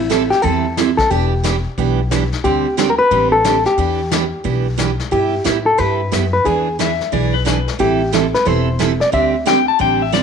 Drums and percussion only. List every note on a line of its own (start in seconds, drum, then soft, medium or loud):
0.11 snare medium
0.11 hi-hat pedal medium
0.32 snare soft
0.44 brush sweep soft
0.44 kick soft
0.77 snare medium
0.77 hi-hat pedal medium
0.99 kick medium
0.99 snare soft
1.11 brush sweep soft
1.11 kick soft
1.44 snare medium
1.44 hi-hat pedal medium
1.78 brush sweep soft
1.78 kick soft
2.11 snare medium
2.11 hi-hat pedal medium
2.32 snare soft
2.45 brush sweep medium
2.45 kick soft
2.78 snare medium
2.78 hi-hat pedal medium
3.11 brush sweep medium
3.11 kick soft
3.45 snare medium
3.45 hi-hat pedal soft
3.65 snare soft
3.78 brush sweep soft
3.78 kick soft
4.11 snare medium
4.11 hi-hat pedal medium
4.45 brush sweep soft
4.45 kick soft
4.78 snare medium
4.78 hi-hat pedal medium
4.99 snare soft
5.12 brush sweep soft
5.12 kick soft
5.45 snare medium
5.45 hi-hat pedal medium
5.79 brush sweep soft
5.79 kick soft
6.13 snare medium
6.13 hi-hat pedal medium
6.46 brush sweep medium
6.46 kick soft
6.80 snare medium
6.80 hi-hat pedal medium
7.01 snare soft
7.13 brush sweep soft
7.13 kick soft
7.47 snare medium
7.47 hi-hat pedal medium
7.68 snare soft
7.80 brush sweep soft
7.80 kick soft
8.13 snare medium
8.13 hi-hat pedal medium
8.35 snare soft
8.47 brush sweep soft
8.47 kick soft
8.80 snare medium
8.80 hi-hat pedal soft
9.01 snare soft
9.13 brush sweep soft
9.13 kick soft
9.47 snare medium
9.47 hi-hat pedal medium
9.80 brush sweep soft
9.80 kick soft
10.14 snare medium
10.14 hi-hat pedal medium